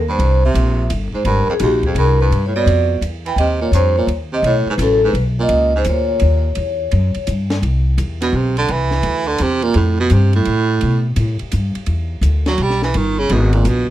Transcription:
Already playing: D#2
0.09 G2 C5
0.19 C2, ride
0.45 C3 E5
0.54 A#1, hi-hat pedal, ride
0.90 G1, hi-hat pedal, ride
1.14 G#2 C5, muted upright bass stroke
1.25 G#1 G2 A#4, ride
1.48 F2 G#4, muted upright bass stroke
1.59 A#1 C#2 D#2 F#4 G4, hi-hat pedal, ride
1.83 F2 G#4, kick, ride
1.95 C2 G2 A#4, ride
2.21 G2 B4
2.31 G2, ride
2.46 A2 C#5
2.56 B2 D5
2.66 F2, ride
3.01 E2, hi-hat pedal, ride
3.26 E3 G5, ride
3.36 D#2 C3 D#5, ride
3.61 A#2 C#5
3.72 F2 G2 C5, hi-hat pedal, ride
3.97 A#2 C#5
4.07 D#2, ride
4.33 C3 D#5
4.42 B1 A2 C#5, ride
4.66 G#2 B4, muted upright bass stroke
4.78 A1 F#2 A4, hi-hat pedal, ride
5.04 G#2
5.13 B1, ride
5.40 A#2 D#5
5.49 C#2, ride
5.76 G#2 C5
5.85 D2 A#2, hi-hat pedal, ride
5.90 C#5
6.20 D#2, ride
6.55 E2, ride
6.91 F#2, ride
7.14 muted upright bass stroke, ride
7.27 G2, hi-hat pedal, ride
7.50 snare, ride
7.62 C2, ride
7.98 E2, hi-hat pedal, ride
8.22 B2, snare, ride
8.32 B1 C3
8.57 D3, ride
8.68 C2 E3, ride
8.91 snare
9.03 D2, ride
9.27 D3
9.38 E2 C3, hi-hat pedal, ride
9.62 A#2, ride
9.74 F2 A2, ride
10.00 B2
10.10 G2 C3, hi-hat pedal, ride
10.33 A2, ride
10.45 A2, ride
10.81 B2, ride
11.16 A2, hi-hat pedal, ride
11.39 muted upright bass stroke, ride
11.52 G2, hi-hat pedal, ride
11.75 muted upright bass stroke, ride
11.86 E2, ride
12.21 D2, hi-hat pedal, ride
12.46 F#3, snare, ride
12.58 B1, ride
12.63 G3
12.70 snare
12.82 E3, snare
12.94 G1 D#3, ride
13.19 C#3
13.29 G#1 B2, ride
13.53 A#2, ride
13.65 A#1 B2, hi-hat pedal, ride

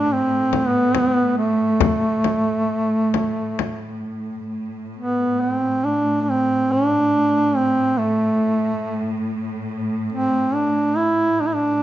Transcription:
Already playing: A2 D4
0.13 C4
0.53 frame drum
0.68 B3
0.95 frame drum
1.37 A3
1.80 frame drum
2.24 frame drum
3.14 frame drum
3.59 frame drum
4.49 A2
4.97 B3
5.41 C4
5.85 D4
6.22 D4
6.30 C4
6.72 D4
7.56 C4
7.98 A3
10.12 C4
10.54 D4
10.97 E4
11.41 D4
11.47 E4
11.55 D4

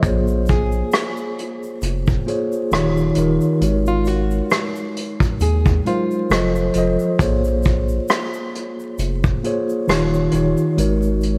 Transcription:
0.03 A#1 A#3 F4 G#4 C5 C#5, kick, closed hi-hat, shaker
0.28 shaker
0.46 G#4, kick, closed hi-hat, shaker
0.72 shaker
0.92 cross-stick, closed hi-hat, shaker
1.17 shaker
1.39 closed hi-hat
1.63 shaker
1.82 F1, closed hi-hat, shaker
2.07 kick, shaker
2.26 A#3 F4 G#4 C5 C#5, closed hi-hat
2.52 shaker
2.71 D#1 D#3 D#4 F4 G4 C#5, cross-stick, closed hi-hat, shaker
2.97 shaker
3.15 D#1 D#3 D#4 F4 G4, closed hi-hat, shaker
3.19 A#4
3.41 shaker
3.61 G#1 G#3 D#4 F#4 A#4 C#5, closed hi-hat, shaker
3.86 F4, shaker
4.05 F#4, closed hi-hat, shaker
4.31 shaker
4.50 cross-stick, closed hi-hat, shaker
4.76 shaker
4.96 closed hi-hat
5.20 kick, shaker
5.40 D#2 G#4, closed hi-hat, shaker
5.65 kick, shaker
5.85 F#3 G#3 D#4 F4 A#4 C5, closed hi-hat
6.11 shaker
6.29 F1 F3 F4 A4 C5 D#5, cross-stick, closed hi-hat, shaker
6.55 shaker
6.73 F1 F3 F4 A4 C5, closed hi-hat, shaker
6.78 D#5
6.99 shaker
7.19 A#1 A#3 F4 G#4 C5 C#5, kick, closed hi-hat, shaker
7.44 shaker
7.63 kick, closed hi-hat, shaker
7.89 shaker
8.08 cross-stick, closed hi-hat, shaker
8.33 shaker
8.55 closed hi-hat
8.80 shaker
8.98 F1, closed hi-hat, shaker
9.24 kick, shaker
9.44 A#3 F4 G#4 C5 C#5, closed hi-hat
9.69 shaker
9.87 D#1 D#3 D#4 F4 G4 C#5, cross-stick, closed hi-hat, shaker
10.14 shaker
10.31 D#1 D#3 D#4 F4 G4 C#5, closed hi-hat, shaker
10.57 shaker
10.77 G#1 G#3 D#4 F#4 A#4 C#5, closed hi-hat, shaker
11.02 shaker
11.21 closed hi-hat, shaker

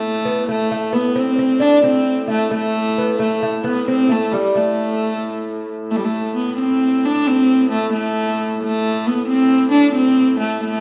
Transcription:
Already playing: A2 A3
0.25 B3
0.46 A2 A3
0.71 A3
0.93 B3
1.16 C4
1.38 C4
1.60 D4
1.84 C4
2.28 A3
2.51 A3
2.98 B3
3.19 A3
3.43 A3
3.64 B3
3.88 C4
4.09 A3
4.32 G3
4.55 A3
5.91 A2 A3
5.96 G3
6.05 A3
6.36 B3
6.59 C4
7.05 D4
7.27 C4
7.72 A3
7.93 A3
8.63 A3
9.07 B3
9.28 C4
9.71 D4
9.95 C4
10.40 A3
10.64 A3

